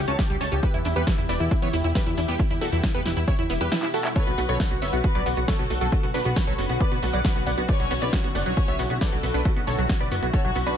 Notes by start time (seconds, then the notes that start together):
Already playing: C#3 E3 G3 E4 F#4
0.08 C#2 C#4 C#5 A5, closed hi-hat, shaker
0.19 B3 G4, kick, snare, closed hi-hat, shaker
0.30 C#2 G3 G4, closed hi-hat
0.41 C#2 C#4 C#5 A5, open hi-hat, shaker
0.52 C#2 C#4 G4, closed hi-hat, shaker
0.63 B2 E3 E4 G4 B4, kick, closed hi-hat, shaker
0.74 E2 E4, closed hi-hat
0.85 E2 D4 E4, open hi-hat, shaker
0.96 E2 B3 G4 B4, closed hi-hat, shaker
1.07 E4, kick, snare, closed hi-hat, shaker
1.18 E2 E4, closed hi-hat
1.29 E1 E4 B4 D5, open hi-hat, shaker
1.40 E2 E4, closed hi-hat, shaker
1.51 D4 E4, kick, closed hi-hat, shaker
1.62 E2 B3 E4 C#5, closed hi-hat
1.73 E2 E4, open hi-hat, shaker
1.84 E2 E4, closed hi-hat, shaker
1.95 E4 G4 B4, kick, snare, closed hi-hat, shaker
2.06 E2 E4, closed hi-hat
2.17 E2 D4 E4, open hi-hat, shaker
2.28 E2 B3 E4 G4, closed hi-hat, shaker
2.39 E4, kick, closed hi-hat, shaker
2.50 E2 E4, closed hi-hat
2.61 E2 E4 F#4 A4, open hi-hat, shaker
2.72 E2 E4, closed hi-hat, shaker
2.83 D4 E4, kick, snare, closed hi-hat, shaker
2.94 E2 B3 G4 B4, closed hi-hat
3.05 E1 E4, snare, open hi-hat, shaker
3.17 E2 E4, closed hi-hat, shaker
3.28 E4 C#5, kick, closed hi-hat, shaker
3.39 E2 E4, closed hi-hat
3.50 E1 B3 E4, open hi-hat, shaker
3.61 E2 E4 G4 B4, closed hi-hat, shaker
3.72 E4, snare, closed hi-hat, shaker
3.83 E4, clap, closed hi-hat
3.94 E4 F#4 A4, open hi-hat, shaker
4.05 E4, clap, closed hi-hat, shaker
4.16 D3 F#3 B3 C#4 F#4 A4 B4 C#5, kick, closed hi-hat, shaker
4.27 B1 B3 F#4, closed hi-hat
4.38 B1 A3 F#4, open hi-hat, shaker
4.49 B1 F#3 A4 C#5, closed hi-hat, shaker
4.60 B3 F#4, kick, snare, closed hi-hat, shaker
4.71 B1 B3 F#4, closed hi-hat
4.82 F#1 B3 B4 C#5 E5, open hi-hat, shaker
4.93 B1 B3 F#4, closed hi-hat, shaker
5.04 A3 F#4, kick, closed hi-hat, shaker
5.15 B1 F#3 B4 D5, closed hi-hat
5.26 B1 B3 F#4, open hi-hat, shaker
5.37 B1 B3 F#4, closed hi-hat, shaker
5.48 A3 B3 A4 C#5, kick, snare, closed hi-hat, shaker
5.59 B1 B3 F#4, closed hi-hat
5.70 B1 A3 F#4, open hi-hat, shaker
5.81 B1 F#3 F#4 A4, closed hi-hat, shaker
5.92 B3 F#4, kick, closed hi-hat, shaker
6.03 B1 B3 F#4, closed hi-hat
6.14 B1 B3 D4 B4, open hi-hat, shaker
6.25 B1 B3 F#4, closed hi-hat, shaker
6.36 A3 F#4, kick, snare, closed hi-hat, shaker
6.47 B1 F#3 A4 C#5, closed hi-hat
6.58 F#1 B3 F#4 B4, open hi-hat, shaker
6.69 B1 B3 F#4, closed hi-hat, shaker
6.80 B3 B4 D5, kick, closed hi-hat, shaker
6.91 B1 B3 F#4, closed hi-hat
7.02 B1 A3 F#4, open hi-hat, shaker
7.13 B1 F#3 D5 F#5, closed hi-hat, shaker
7.25 B3 F#4, kick, snare, closed hi-hat, shaker
7.35 B1 B3 F#4, closed hi-hat
7.46 B1 B3 D5 F#5, open hi-hat, shaker
7.58 B1 B3 F#4, closed hi-hat, shaker
7.68 A3 C#4 E4 B4 C#5 D5, kick, closed hi-hat, shaker
7.80 B1 F#3 F#4, closed hi-hat
7.91 B1 B3 F#4, open hi-hat, shaker
8.02 B1 B3 B4 D5, closed hi-hat, shaker
8.13 B3 F#4, kick, snare, closed hi-hat, shaker
8.24 B1 B3 F#4, closed hi-hat
8.35 F#1 A3 C#4 C#5 D5 F#5, open hi-hat, shaker
8.46 B1 F#3 F#4, closed hi-hat, shaker
8.57 B3 F#4, kick, closed hi-hat, shaker
8.68 B1 B3 C#5 E5, closed hi-hat
8.79 B1 B3 F#4, open hi-hat, shaker
8.90 B1 B3 F#4, closed hi-hat, shaker
9.01 A3 A4 B4 D5, kick, snare, closed hi-hat, shaker
9.12 B1 F#3 F#4, closed hi-hat
9.23 B1 B3 F#4, open hi-hat, shaker
9.34 B1 B3 D4 B4, closed hi-hat, shaker
9.45 B3 F#4, kick, closed hi-hat, shaker
9.56 B1 B3 F#4, closed hi-hat
9.67 B1 A3 F#4 A4 C#5, open hi-hat, shaker
9.78 B1 F#3 F#4, closed hi-hat, shaker
9.89 B3 F#4, kick, snare, closed hi-hat, shaker
10.00 B1 B3 B4 D5, closed hi-hat
10.11 F#1 B3 F#4, open hi-hat, shaker
10.22 B1 B3 F#4, closed hi-hat, shaker
10.33 A3 A4 C#5, kick, closed hi-hat, shaker
10.44 B1 F#3 F#4, closed hi-hat
10.55 B1 B3 F#4, open hi-hat, shaker
10.66 B1 B3 D4 B4, closed hi-hat, shaker